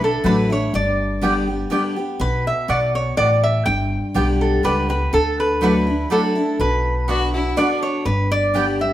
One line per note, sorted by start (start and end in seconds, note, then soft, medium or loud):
0.00 0.18 B1 medium
0.00 0.21 D3 medium
0.00 0.24 D4 soft
0.00 0.24 E4 medium
0.00 0.27 A4 medium
0.24 0.66 A1 medium
0.24 0.49 F#3 loud
0.24 0.34 A3 medium
0.24 0.50 A3 medium
0.24 0.50 D4 medium
0.24 0.35 E4 medium
0.24 0.49 E4 medium
0.24 0.52 B4 loud
0.24 0.35 D5 medium
0.24 0.35 F#5 medium
0.50 0.73 D4 medium
0.50 0.72 E4 medium
0.50 0.73 C#5 medium
0.73 1.64 G1 medium
0.73 1.67 G2 loud
0.73 1.94 D5 medium
1.21 1.47 D3 medium
1.21 1.47 G3 medium
1.21 1.32 B3 medium
1.21 1.48 B3 loud
1.21 1.32 G4 medium
1.21 1.46 G4 loud
1.21 1.33 D5 medium
1.21 1.33 G5 loud
1.47 1.71 B3 soft
1.47 1.70 G4 medium
1.70 1.96 D3 medium
1.70 1.96 G3 medium
1.70 1.81 B3 medium
1.70 1.97 B3 medium
1.70 1.81 G4 medium
1.70 1.95 G4 loud
1.70 1.81 D5 medium
1.70 1.82 G5 medium
1.96 2.20 B3 soft
1.96 2.19 G4 medium
2.20 2.50 B1 medium
2.20 2.67 B2 loud
2.20 2.45 B4 loud
2.47 2.70 E5 medium
2.68 3.10 B1 medium
2.68 3.15 B2 medium
2.68 2.78 B3 medium
2.68 2.79 F#4 medium
2.68 2.79 D5 loud
2.68 2.95 D5 medium
2.68 2.79 F#5 medium
2.95 3.16 C#5 medium
3.17 3.59 A1 medium
3.17 3.64 A2 medium
3.17 3.27 B3 medium
3.17 3.27 F#4 medium
3.17 3.42 D5 loud
3.17 3.28 D5 medium
3.17 3.28 F#5 medium
3.43 3.65 E5 medium
3.65 3.97 G1 loud
3.65 4.59 G2 medium
3.65 4.37 G5 loud
4.14 4.57 B1 medium
4.14 4.61 D3 medium
4.14 4.62 G3 medium
4.14 4.25 B3 medium
4.14 4.62 B3 loud
4.14 4.25 G4 loud
4.14 4.62 G4 loud
4.14 4.25 D5 medium
4.14 4.25 G5 loud
4.41 4.62 A4 medium
4.63 5.06 C#2 medium
4.63 4.89 D3 medium
4.63 4.89 G3 medium
4.63 4.74 B3 medium
4.63 4.89 B3 loud
4.63 4.74 G4 medium
4.63 4.88 G4 medium
4.63 4.89 B4 loud
4.63 4.74 D5 medium
4.63 4.75 G5 medium
4.89 5.13 B3 soft
4.89 5.11 G4 medium
4.89 5.11 B4 medium
5.13 6.04 D2 medium
5.13 6.06 D3 medium
5.13 5.37 A4 loud
5.40 5.62 B4 medium
5.61 5.86 F#3 medium
5.61 5.71 A3 loud
5.61 5.87 A3 medium
5.61 5.87 D4 loud
5.61 5.72 E4 medium
5.61 5.86 E4 loud
5.61 6.08 B4 medium
5.61 5.72 D5 medium
5.61 5.72 F#5 loud
5.87 6.11 D4 soft
5.87 6.09 E4 medium
6.10 6.35 F#3 medium
6.10 6.20 A3 medium
6.10 6.36 A3 medium
6.10 6.36 D4 medium
6.10 6.20 E4 medium
6.10 6.34 E4 medium
6.10 6.57 A4 medium
6.10 6.20 D5 medium
6.10 6.21 F#5 medium
6.35 6.59 D4 medium
6.35 6.58 E4 medium
6.59 7.50 B1 medium
6.59 7.52 B2 medium
6.59 7.79 B4 medium
7.08 7.33 D3 medium
7.08 7.18 B3 medium
7.08 7.33 B3 medium
7.08 7.34 D4 medium
7.08 7.32 F#4 loud
7.08 7.18 F#4 medium
7.08 7.33 F#4 medium
7.08 7.18 D5 medium
7.08 7.18 F#5 medium
7.33 7.57 D4 soft
7.33 7.59 E4 medium
7.33 7.56 F#4 soft
7.57 8.03 D3 medium
7.57 7.67 B3 medium
7.57 8.04 B3 medium
7.57 8.06 D4 medium
7.57 8.04 D4 loud
7.57 7.67 F#4 medium
7.57 8.04 F#4 loud
7.57 7.81 D5 loud
7.57 7.67 D5 medium
7.57 7.67 F#5 medium
7.83 8.04 C#5 medium
8.05 8.93 G1 loud
8.05 8.93 G2 medium
8.05 8.30 B4 medium
8.31 8.77 D5 loud
8.54 8.79 D3 medium
8.54 8.79 G3 medium
8.54 8.64 B3 medium
8.54 8.80 B3 medium
8.54 8.64 G4 loud
8.54 8.78 G4 loud
8.54 8.64 D5 loud
8.54 8.65 G5 loud
8.79 8.93 B3 soft
8.79 8.93 G4 medium
8.79 8.93 E5 medium